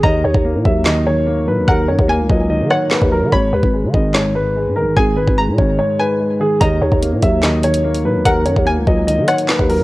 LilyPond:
<<
  \new Staff \with { instrumentName = "Synth pluck" } { \time 4/4 \key ees \minor \tempo 4 = 146 bes''2 r2 | ges''4 aes''4. ges''4. | ces'''2 r2 | aes''4 bes''4. aes''4. |
bes''2 r2 | ges''4 aes''4. ges''4. | }
  \new Staff \with { instrumentName = "Grand piano" } { \time 4/4 \key ees \minor ees''8 des''8 r8 fes''8 ees''8 des''4 ces''8 | bes'8 des''8 r8 ees''8 ees''8 des''8 ces''8 bes'8 | des''8 ces''8 r8 ees''8 des''8 ces''4 bes'8 | aes'8 ces''8 r8 des''8 des''8 ces''4 aes'8 |
ees''8 des''8 r8 fes''8 ees''8 des''4 ces''8 | bes'8 des''8 r8 ees''8 ees''8 des''8 ces''8 bes'8 | }
  \new Staff \with { instrumentName = "Grand piano" } { \clef bass \time 4/4 \key ees \minor ees8 ees8 bes8 ges8 ees8 ees8 bes8 ges8 | ees8 ees8 bes8 ges8 ees8 ees8 bes8 ges8 | aes,8 aes,8 aes8 ees8 aes,8 aes,8 aes8 ees8 | aes,8 aes,8 aes8 ees8 aes,8 aes,8 aes8 ees8 |
ees8 ees8 bes8 ges8 ees8 ees8 bes8 ges8 | ees8 ees8 bes8 ges8 ees8 ees8 bes8 ges8 | }
  \new Staff \with { instrumentName = "808-style bass" } { \clef bass \time 4/4 \key ees \minor ees,8 ees,16 ees,8 bes,16 ees,2 bes,16 ees,16 | ees,8 ges,16 ees,8 des,16 des,8. ees16 r8. ees,8 ees16 | aes,,8 ees,16 aes,,8 ees16 aes,,4.~ aes,,16 aes,16. aes,,16. | aes,,8. aes,,8 ces16 aes,,8 r2 |
ees,8 ees,16 ees,8 bes,16 ees,2 bes,16 ees,16 | ees,8 ges,16 ees,8 des,16 des,8. ees16 r8. ees,8 ees16 | }
  \new DrumStaff \with { instrumentName = "Drums" } \drummode { \time 4/4 bd8. bd16 r8 bd8 <hc sn>4 r4 | bd8. bd16 r8 bd8 r8 ss8 <hc sn>16 bd8. | bd8. bd16 r8 bd8 <hc sn>4 r4 | bd8. bd16 r8 bd8 r4 r4 |
<hh bd>8. bd16 hh8 <hh bd>8 <hc hh sn>8 hh16 hh16 r16 hh8. | <hh bd>8 hh16 bd16 r8 bd8 hh8 <hh ss>16 hh16 <hc sn>16 bd16 hho8 | }
>>